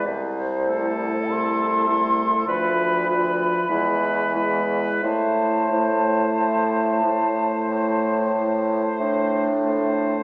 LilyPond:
<<
  \new Staff \with { instrumentName = "Flute" } { \time 4/4 \key a \minor \tempo 4 = 46 c''4 c'''4 b''4.~ b''16 r16 | a''2. r4 | }
  \new Staff \with { instrumentName = "Oboe" } { \time 4/4 \key a \minor r8 a'4 a'8 b'8 b'8 b'8 b'8 | c''8 c''4 c''4 c''4 c''8 | }
  \new Staff \with { instrumentName = "Clarinet" } { \time 4/4 \key a \minor r8 e'4 e'8 f'8 f'8 e'8 e'8 | e'8 e'4 e'4 e'8 d'4 | }
  \new Staff \with { instrumentName = "French horn" } { \time 4/4 \key a \minor r8 a4 a8 f8 f8 gis8 gis8 | a8 a4 a4 a4 a8 | }
  \new Staff \with { instrumentName = "Bassoon" } { \clef bass \time 4/4 \key a \minor c,4 c,4 d,4 e,4 | a,4 a,4 a,4 a,4 | }
>>